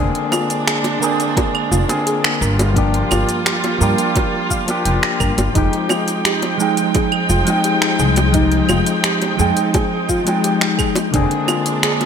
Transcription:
Already playing: D3 G#3 A#3 C4 D4
0.00 G#4
0.15 closed hi-hat
0.32 F4, high bongo, claves, shaker
0.50 closed hi-hat, shaker
0.67 G#4, finger snap, closed hi-hat, shaker
0.84 closed hi-hat, high bongo
0.99 D3 A#3 C4 A#4, shaker
1.04 G#4
1.20 closed hi-hat, shaker
1.37 A#4, kick, closed hi-hat, high bongo, shaker
1.55 claves
1.71 F1 F4, shaker
1.88 D3 A#3 C4 G#4, closed hi-hat, high bongo, shaker
2.07 G#4, closed hi-hat, shaker
2.24 finger snap, closed hi-hat
2.41 G1 G3 F4 A#4, shaker
2.59 closed hi-hat, high bongo, shaker
2.73 F3 A#3 D4, kick, closed hi-hat, shaker
2.78 G4
2.94 closed hi-hat
3.11 G1 F4, high bongo, claves, shaker
3.29 closed hi-hat, shaker
3.46 G4, finger snap, closed hi-hat, shaker
3.64 closed hi-hat, high bongo
3.78 G2 F3 A#3 D4 A#4, shaker
3.83 G4
3.98 closed hi-hat, shaker
4.16 A#4, kick, closed hi-hat, high bongo, shaker
4.51 F5, kick, shaker
4.66 F3 A#3 D4, closed hi-hat, high bongo, shaker
4.71 G4
4.85 F1 G5, closed hi-hat, shaker
5.03 finger snap, closed hi-hat
5.20 G1 A#4, kick, claves, shaker
5.38 G1, closed hi-hat, high bongo, shaker
5.53 F1 F3 G#3 C4 D#4 G5, kick, closed hi-hat, shaker
5.58 G4
5.73 closed hi-hat
5.89 F4, high bongo, claves, shaker
6.08 closed hi-hat, shaker
6.25 G4, finger snap, closed hi-hat, shaker
6.42 closed hi-hat, high bongo
6.57 F3 G#3 D#4 G#4, shaker
6.62 G5
6.77 closed hi-hat, shaker
6.95 G#4, kick, closed hi-hat, high bongo, shaker
7.12 claves
7.29 F1 F4, shaker
7.45 F3 G#3 D#4, closed hi-hat, high bongo, shaker
7.50 G5
7.64 G4, closed hi-hat, shaker
7.82 finger snap, closed hi-hat
7.99 C2 G#4, shaker
8.16 closed hi-hat, high bongo, shaker
8.32 F3 G#3 D#4, kick, closed hi-hat, shaker
8.37 G4
8.52 closed hi-hat
8.69 F1 F4, high bongo, claves, shaker
8.86 closed hi-hat, shaker
9.04 G4, finger snap, closed hi-hat, shaker
9.22 closed hi-hat, high bongo
9.37 F2 F3 G#3 D#4 G#4, shaker
9.41 G5
9.57 closed hi-hat, shaker
9.74 G#4, kick, closed hi-hat, high bongo, shaker
10.09 F4, kick, shaker
10.24 F3 G#3 D#4, closed hi-hat, high bongo, shaker
10.29 G5
10.44 G4, closed hi-hat, shaker
10.61 finger snap, closed hi-hat
10.79 G#4, kick, claves, shaker
10.96 closed hi-hat, high bongo, shaker
11.11 F1 D3 G#3 A#3 C4 D4, kick, closed hi-hat, shaker
11.16 G#4
11.31 closed hi-hat
11.48 F4, high bongo, claves, shaker
11.66 closed hi-hat, shaker
11.83 G#4, finger snap, closed hi-hat, shaker
12.01 closed hi-hat, high bongo

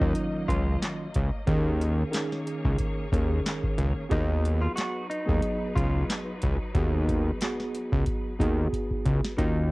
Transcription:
Already playing: F#3 A#3 D#4 D#5
0.00 D#2 D#3 F#3 C#4 F4, kick
0.15 closed hi-hat
0.48 C#2 F4, kick, closed hi-hat
0.83 snare, clap, closed hi-hat
1.14 C#2, kick, closed hi-hat
1.47 D#2 D#3 A#3 C#4 G#4 A#4 C#5, kick, closed hi-hat
1.81 closed hi-hat
2.11 D#3 C#4 G#4 A#4, snare, closed hi-hat
2.15 clap
2.32 snare
2.47 closed hi-hat
2.65 C#2, kick
2.79 kick, closed hi-hat
3.12 D#2 D#3 C#4 G#4 A#4, kick, closed hi-hat
3.46 snare, clap, closed hi-hat
3.63 kick
3.78 C#2, closed hi-hat
4.09 D#2 F#3 B3 D#4 F#4 G#4 B4, kick, closed hi-hat
4.45 closed hi-hat
4.61 F4
4.76 F#4, snare, clap, closed hi-hat
5.10 D#4, closed hi-hat
5.26 D#2 F#3 B3 G#4, kick
5.42 closed hi-hat
5.75 C#2 F4, kick, closed hi-hat
6.10 snare, clap, closed hi-hat
6.42 C#2, kick, closed hi-hat
6.75 D#2 B3 F#4 G#4, kick, closed hi-hat
7.09 kick, closed hi-hat
7.41 B3 F#4 G#4, snare, clap, closed hi-hat
7.60 snare
7.75 closed hi-hat
7.92 C#2, kick
8.06 kick, closed hi-hat
8.39 D#2 B3 F#4 G#4, kick, closed hi-hat
8.73 kick, closed hi-hat
8.91 kick
9.06 C#2, kick, closed hi-hat
9.25 snare
9.37 D#2 D#3 C#4 D#4 F4 F#4, kick, closed hi-hat

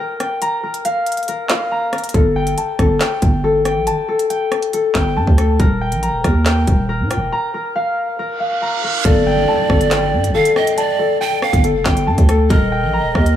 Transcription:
Already playing: G5 A#5
0.00 A#4
0.20 G5, cross-stick, closed hi-hat
0.42 A#5, closed hi-hat
0.63 A#4
0.74 closed hi-hat
0.85 F5, closed hi-hat
1.06 closed hi-hat
1.12 closed hi-hat
1.17 closed hi-hat
1.23 closed hi-hat
1.28 A#4, closed hi-hat
1.49 F5, snare, clap, closed hi-hat
1.71 A#5
1.93 A#4, cross-stick, closed hi-hat
1.98 closed hi-hat
2.04 closed hi-hat
2.09 closed hi-hat
2.14 G1 A4, kick, closed hi-hat
2.36 G5
2.47 closed hi-hat
2.58 A5, closed hi-hat
2.79 G1 A4, kick, cross-stick, closed hi-hat
3.01 G5, snare, clap, closed hi-hat
3.22 G1, kick, closed hi-hat
3.44 A4
3.65 G5, cross-stick, closed hi-hat
3.76 A#1
3.87 G1 A5, closed hi-hat
4.08 A4
4.19 closed hi-hat
4.30 G5, closed hi-hat
4.52 cross-stick, closed hi-hat
4.62 closed hi-hat
4.73 A4, closed hi-hat
4.95 G1 G5, kick, snare, clap, closed hi-hat
5.16 G2 A5
5.27 D2, kick
5.38 A4, cross-stick, closed hi-hat
5.60 D#1 A#4, kick, closed hi-hat
5.81 G5
5.92 A#1, closed hi-hat
6.03 A#5, closed hi-hat
6.08 D#1
6.24 D#2 A#4, kick, cross-stick, closed hi-hat
6.46 G5, snare, clap, closed hi-hat
6.67 D#1, kick, closed hi-hat
6.89 A#4
7.00 A#2
7.11 G5, cross-stick, closed hi-hat
7.16 D#1
7.32 A#5
7.54 A#4
7.76 F5
8.19 A#4, reverse cymbal
8.40 F5
8.62 A#5
8.84 A#4
9.05 G1 A4 D5, kick, closed hi-hat, downlifter
9.27 G5
9.48 A5
9.70 G1 A4, kick, cross-stick
9.81 closed hi-hat
9.91 G5, snare, clap, closed hi-hat
10.13 G2
10.24 closed hi-hat
10.29 G1
10.34 A4 F5
10.45 closed hi-hat
10.56 D#5 G5, cross-stick
10.67 closed hi-hat
10.77 D5 A5, closed hi-hat
10.99 A4
11.21 G5
11.42 F5, cross-stick
11.53 G1, kick, closed hi-hat
11.64 A4, closed hi-hat
11.75 F1
11.85 G1 G5, kick, snare, clap, closed hi-hat
11.97 closed hi-hat
12.07 G2 A5
12.18 D2, kick, closed hi-hat
12.29 A4, cross-stick, closed hi-hat
12.50 D#1 A#4 D#5, kick, closed hi-hat
12.72 G5
12.83 A#1
12.93 A#5
12.99 D#1
13.15 D#2 A#4, kick, cross-stick
13.26 closed hi-hat

